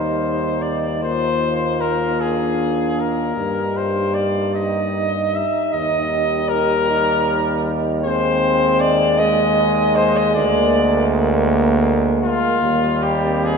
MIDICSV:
0, 0, Header, 1, 6, 480
1, 0, Start_track
1, 0, Key_signature, -3, "major"
1, 0, Tempo, 790514
1, 625, Time_signature, 6, 3, 24, 8
1, 3490, Tempo, 769231
1, 6370, Tempo, 753769
1, 7810, Tempo, 832178
1, 8358, End_track
2, 0, Start_track
2, 0, Title_t, "Flugelhorn"
2, 0, Program_c, 0, 56
2, 0, Note_on_c, 0, 72, 97
2, 375, Note_on_c, 0, 74, 96
2, 384, Note_off_c, 0, 72, 0
2, 621, Note_off_c, 0, 74, 0
2, 625, Note_on_c, 0, 72, 116
2, 1097, Note_on_c, 0, 70, 111
2, 1106, Note_off_c, 0, 72, 0
2, 1341, Note_on_c, 0, 68, 97
2, 1350, Note_off_c, 0, 70, 0
2, 1821, Note_on_c, 0, 70, 100
2, 1830, Note_off_c, 0, 68, 0
2, 2287, Note_on_c, 0, 72, 104
2, 2296, Note_off_c, 0, 70, 0
2, 2515, Note_on_c, 0, 74, 112
2, 2524, Note_off_c, 0, 72, 0
2, 2757, Note_off_c, 0, 74, 0
2, 2760, Note_on_c, 0, 75, 98
2, 3248, Note_on_c, 0, 76, 117
2, 3257, Note_off_c, 0, 75, 0
2, 3475, Note_off_c, 0, 76, 0
2, 3479, Note_on_c, 0, 75, 117
2, 3951, Note_on_c, 0, 70, 120
2, 3960, Note_off_c, 0, 75, 0
2, 4757, Note_off_c, 0, 70, 0
2, 4921, Note_on_c, 0, 72, 127
2, 5396, Note_on_c, 0, 74, 127
2, 5405, Note_off_c, 0, 72, 0
2, 5635, Note_on_c, 0, 75, 127
2, 5644, Note_off_c, 0, 74, 0
2, 6117, Note_on_c, 0, 72, 127
2, 6126, Note_off_c, 0, 75, 0
2, 6250, Note_on_c, 0, 75, 126
2, 6259, Note_off_c, 0, 72, 0
2, 6356, Note_off_c, 0, 75, 0
2, 6360, Note_on_c, 0, 74, 127
2, 6825, Note_off_c, 0, 74, 0
2, 7557, Note_on_c, 0, 65, 122
2, 8042, Note_on_c, 0, 67, 100
2, 8051, Note_off_c, 0, 65, 0
2, 8284, Note_on_c, 0, 68, 121
2, 8293, Note_off_c, 0, 67, 0
2, 8358, Note_off_c, 0, 68, 0
2, 8358, End_track
3, 0, Start_track
3, 0, Title_t, "Euphonium"
3, 0, Program_c, 1, 58
3, 0, Note_on_c, 1, 63, 97
3, 599, Note_off_c, 1, 63, 0
3, 626, Note_on_c, 1, 65, 102
3, 2024, Note_off_c, 1, 65, 0
3, 2047, Note_on_c, 1, 67, 104
3, 3304, Note_off_c, 1, 67, 0
3, 3483, Note_on_c, 1, 67, 98
3, 4209, Note_on_c, 1, 63, 96
3, 4219, Note_off_c, 1, 67, 0
3, 4925, Note_off_c, 1, 63, 0
3, 4929, Note_on_c, 1, 60, 119
3, 5647, Note_on_c, 1, 56, 102
3, 5656, Note_off_c, 1, 60, 0
3, 6369, Note_on_c, 1, 58, 110
3, 6379, Note_off_c, 1, 56, 0
3, 8358, Note_off_c, 1, 58, 0
3, 8358, End_track
4, 0, Start_track
4, 0, Title_t, "French horn section"
4, 0, Program_c, 2, 60
4, 0, Note_on_c, 2, 63, 63
4, 1319, Note_off_c, 2, 63, 0
4, 1345, Note_on_c, 2, 62, 68
4, 2049, Note_off_c, 2, 62, 0
4, 2050, Note_on_c, 2, 63, 69
4, 4824, Note_off_c, 2, 63, 0
4, 4930, Note_on_c, 2, 63, 80
4, 6344, Note_off_c, 2, 63, 0
4, 6369, Note_on_c, 2, 58, 87
4, 7804, Note_off_c, 2, 58, 0
4, 7812, Note_on_c, 2, 58, 74
4, 8143, Note_off_c, 2, 58, 0
4, 8166, Note_on_c, 2, 60, 73
4, 8358, Note_off_c, 2, 60, 0
4, 8358, End_track
5, 0, Start_track
5, 0, Title_t, "Trombone"
5, 0, Program_c, 3, 57
5, 0, Note_on_c, 3, 55, 80
5, 627, Note_on_c, 3, 58, 75
5, 636, Note_off_c, 3, 55, 0
5, 3330, Note_off_c, 3, 58, 0
5, 3490, Note_on_c, 3, 55, 93
5, 4926, Note_on_c, 3, 56, 101
5, 4935, Note_off_c, 3, 55, 0
5, 7804, Note_off_c, 3, 56, 0
5, 7808, Note_on_c, 3, 55, 101
5, 8358, Note_off_c, 3, 55, 0
5, 8358, End_track
6, 0, Start_track
6, 0, Title_t, "Tuba"
6, 0, Program_c, 4, 58
6, 0, Note_on_c, 4, 39, 90
6, 2025, Note_off_c, 4, 39, 0
6, 2045, Note_on_c, 4, 43, 92
6, 3303, Note_off_c, 4, 43, 0
6, 3487, Note_on_c, 4, 39, 96
6, 6371, Note_on_c, 4, 38, 121
6, 6381, Note_off_c, 4, 39, 0
6, 7702, Note_off_c, 4, 38, 0
6, 7810, Note_on_c, 4, 39, 110
6, 8358, Note_off_c, 4, 39, 0
6, 8358, End_track
0, 0, End_of_file